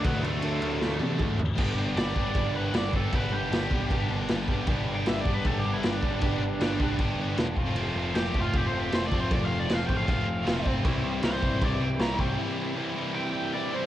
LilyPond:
<<
  \new Staff \with { instrumentName = "Overdriven electric guitar" } { \time 4/4 \key g \mixolydian \tempo 4 = 156 <b b'>8 <a a'>2 r4. | r4 d''4. b'8 d''8 a'8 | b'8 g'2 r4. | \tuplet 3/2 { r4 g''8 e''8 d''8 b'8 a'8 g'8 e'8 } d'4~ |
d'2 r2 | r4 \tuplet 3/2 { g'4 f'8 g'8 c''8 g'8 c''8 d''8 c''8 } | \tuplet 3/2 { d''8 f''8 d''8 f''8 g''8 f''8~ } f''4. r8 | r4 c''4 d''8 g''8 bes''8 g''8 |
r2 g''4 d''8 c''8 | }
  \new Staff \with { instrumentName = "Distorted electric guitar" } { \time 4/4 \key g \mixolydian <d fis a d'>2.~ <d fis a d'>8 r8 | <g b d' g'>4 <g b d' g'>8 <g b d' g'>8 <g b d' g'>4 <g b d' g'>8 <g b d' g'>8 | <g b d' g'>4 <g b d' g'>8 <g b d' g'>8 <g b d' g'>4 <g b d' g'>8 <g b d' g'>8 | <g b d' g'>4 <g b d' g'>8 <g b d' g'>8 <g b d' g'>4 <g b d' g'>8 <g b d' g'>8 |
<g b d' g'>4 <g b d' g'>8 <g b d' g'>8 <g b d' g'>4 <g b d' g'>8 <f a c' f'>8 | <f a c' f'>4 <f a c' f'>8 <f a c' f'>8 <f a c' f'>4 <f a c' f'>8 <f a c' f'>8 | <f a c' f'>4 <f a c' f'>8 <f a c' f'>8 <f a c' f'>4 <f a c' f'>8 <f a c' f'>8 | <c e g c' e'>4 <c e g c' e'>8 <c e g c' e'>8 <c e g c' e'>4 <c e g c' e'>8 <c e g c' e'>8 |
<c e g c' e'>4 <c e g c' e'>8 <c e g c' e'>8 <c e g c' e'>4 <c e g c' e'>8 <c e g c' e'>8 | }
  \new Staff \with { instrumentName = "Distorted electric guitar" } { \time 4/4 \key g \mixolydian <d fis a d'>2 <d fis a d'>8 <d fis a d'>4 r8 | <g b d' g'>1 | <g b d' g'>1 | <g b d' g'>1 |
<g b d' g'>2.~ <g b d' g'>8 <f a c' f'>8~ | <f a c' f'>2.~ <f a c' f'>8 <f a c' f'>8~ | <f a c' f'>2.~ <f a c' f'>8 r8 | <c e g c' e'>1 |
<c e g c' e'>1 | }
  \new Staff \with { instrumentName = "Distorted electric guitar" } { \time 4/4 \key g \mixolydian <d fis a d'>4 <d fis a d'>2~ <d fis a d'>8 r8 | <g, d g b d' g'>4 <g, d g b d' g'>8 <g, d g b d' g'>8 <g, d g b d' g'>4 <g, d g b d' g'>8 <g, d g b d' g'>8 | <g, d g b d' g'>4 <g, d g b d' g'>8 <g, d g b d' g'>8 <g, d g b d' g'>4 <g, d g b d' g'>8 <g, d g b d' g'>8 | <g, d g b d' g'>4 <g, d g b d' g'>8 <g, d g b d' g'>8 <g, d g b d' g'>4 <g, d g b d' g'>8 <g, d g b d' g'>8 |
<g, d g b d' g'>4 <g, d g b d' g'>8 <g, d g b d' g'>8 <g, d g b d' g'>4 <g, d g b d' g'>8 <f a c' f'>8 | <f a c' f'>4 <f a c' f'>8 <f a c' f'>8 <f a c' f'>4 <f a c' f'>8 <f a c' f'>8 | <f a c' f'>4 <f a c' f'>8 <f a c' f'>8 <f a c' f'>4 <f a c' f'>8 <f a c' f'>8 | <c e g c' e'>4 <c e g c' e'>8 <c e g c' e'>8 <c e g c' e'>4 <c e g c' e'>8 <c e g c' e'>8 |
<c e g c' e'>4 <c e g c' e'>8 <c e g c' e'>8 <c e g c' e'>4 <c e g c' e'>8 <c e g c' e'>8 | }
  \new Staff \with { instrumentName = "Picked electric bass" } { \clef bass \time 4/4 \key g \mixolydian d,8 d,8 d,8 d,8 d,8 c8 d,8 d,8 | g,,8 g,,8 g,,8 g,,8 g,,8 g,,8 g,,8 g,,8 | g,,8 g,,8 g,,8 c,8 g,,8 g,,8 g,,8 g,,8 | g,,8 g,,8 g,,8 g,,8 g,,8 g,,8 g,,8 g,,8 |
g,,8 g,,8 g,,8 c,8 g,,8 g,,8 e,,8 f,,8 | f,,8 f,,8 f,,8 f,,8 f,,8 f,,8 f,,8 f,,8 | f,,8 f,,8 f,,8 a,,8 f,,8 f,,8 f,,8 f,,8 | c,8 c,8 c,8 c,8 c,8 c,8 c,8 c,8 |
r1 | }
  \new DrumStaff \with { instrumentName = "Drums" } \drummode { \time 4/4 <cymc bd>8 cymc8 cymc8 cymc8 sn8 tommh8 <bd toml>8 tomfh8 | <cymc bd>4 <cymc sn>8 bd8 <cymc bd>4 <cymc sn>8 bd8 | <cymc bd>4 <cymc sn>8 bd8 <cymc bd>4 <cymc sn>8 bd8 | <cymc bd>4 <cymc sn>8 bd8 <cymc bd>4 <cymc sn>8 bd8 |
<cymc bd>4 <cymc sn>8 bd8 <cymc bd>4 <cymc sn>8 bd8 | cymc4 <cymc sn>8 bd8 <cymc bd>4 <cymc sn>8 bd8 | <cymc bd>4 <cymc sn>8 bd8 <cymc bd>4 <cymc sn>8 bd8 | <cymc bd>4 <cymc sn>8 bd8 <cymc bd>4 <cymc sn>8 bd8 |
r4 r4 r4 r4 | }
>>